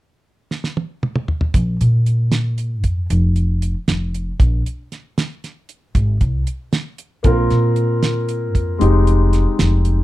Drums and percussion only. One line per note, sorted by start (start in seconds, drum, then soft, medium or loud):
0.51 snare medium
0.64 snare medium
0.77 high tom medium
1.03 mid tom medium
1.16 mid tom medium
1.28 floor tom medium
1.41 floor tom medium
1.54 kick medium
1.54 closed hi-hat medium
1.81 closed hi-hat medium
2.06 closed hi-hat soft
2.32 snare medium
2.32 closed hi-hat medium
2.58 closed hi-hat medium
2.84 kick medium
2.84 closed hi-hat medium
3.10 closed hi-hat medium
3.36 closed hi-hat medium
3.62 closed hi-hat medium
3.88 snare medium
3.88 closed hi-hat medium
4.14 closed hi-hat soft
4.40 kick loud
4.40 closed hi-hat medium
4.66 closed hi-hat soft
4.92 snare soft
4.92 closed hi-hat soft
5.18 snare medium
5.18 closed hi-hat medium
5.44 snare soft
5.44 closed hi-hat medium
5.69 closed hi-hat soft
5.95 kick loud
5.95 closed hi-hat medium
6.21 kick medium
6.21 closed hi-hat soft
6.47 closed hi-hat medium
6.73 snare medium
6.73 closed hi-hat medium
6.98 closed hi-hat medium
7.24 kick medium
7.24 closed hi-hat medium
7.50 snare soft
7.50 closed hi-hat medium
7.76 closed hi-hat medium
8.03 snare medium
8.03 closed hi-hat medium
8.29 closed hi-hat medium
8.55 kick medium
8.55 closed hi-hat medium
8.81 closed hi-hat medium
9.07 closed hi-hat soft
9.33 snare soft
9.33 closed hi-hat medium
9.59 snare loud
9.59 closed hi-hat medium
9.85 closed hi-hat medium